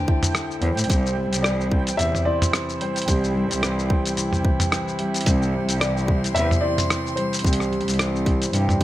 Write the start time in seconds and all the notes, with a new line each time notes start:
Already playing: D3 A3 D4 E4 G4 C5 G5
0.08 E4, kick
0.23 closed hi-hat, mid tom, shaker
0.35 A3, cross-stick, closed hi-hat, shaker
0.51 shaker
0.62 E2 A3 C5, closed hi-hat
0.77 A2, closed hi-hat, shaker
0.84 closed hi-hat
0.89 C2 C3 G3 C5, kick, closed hi-hat, shaker
1.06 shaker
1.16 G3
1.31 C2, closed hi-hat, shaker
1.42 E3 D5, cross-stick, shaker
1.61 shaker
1.72 kick
1.87 closed hi-hat, shaker
1.97 E2 C3 C5 E5, closed hi-hat, shaker
2.15 mid tom, shaker
2.25 E4 D5 C6
2.42 closed hi-hat, mid tom, shaker
2.53 E3, cross-stick, closed hi-hat, shaker
2.69 shaker
2.81 G3 C5, closed hi-hat
2.96 closed hi-hat, shaker
3.02 closed hi-hat
3.08 C2 C3 G4, kick, closed hi-hat, shaker
3.24 shaker
3.35 G3
3.51 C2, closed hi-hat, shaker
3.63 E3 C5, cross-stick, closed hi-hat, shaker
3.79 shaker
3.90 kick
4.06 closed hi-hat, shaker
4.17 C3 G5, closed hi-hat, shaker
4.33 mid tom, shaker
4.45 E4, kick
4.60 closed hi-hat, mid tom, shaker
4.72 E3, cross-stick, closed hi-hat, shaker
4.88 shaker
4.99 G3 E5, closed hi-hat
5.14 closed hi-hat, shaker
5.21 closed hi-hat
5.26 C2 C3 C5 C6, kick, closed hi-hat, shaker
5.42 shaker
5.54 G3
5.68 C2, closed hi-hat, shaker
5.80 E3 D5, cross-stick, closed hi-hat, shaker
5.97 shaker
6.08 kick
6.24 closed hi-hat, shaker
6.35 E2 C3 C5 E5, closed hi-hat, shaker
6.51 mid tom, shaker
6.61 E4 D5 C6
6.78 closed hi-hat, mid tom, shaker
6.89 E3, cross-stick, closed hi-hat, shaker
7.06 shaker
7.16 G3 C5, closed hi-hat
7.33 closed hi-hat, shaker
7.39 closed hi-hat
7.44 C2 C3 G4, kick, shaker
7.53 closed hi-hat
7.60 cross-stick, shaker
7.71 G3, closed hi-hat
7.81 closed hi-hat
7.87 C2, closed hi-hat, shaker
7.94 closed hi-hat
7.99 E3 C5, cross-stick, closed hi-hat, shaker
8.16 shaker
8.26 kick, closed hi-hat
8.42 closed hi-hat, shaker
8.53 G2 C3 G5, closed hi-hat, shaker
8.69 mid tom, shaker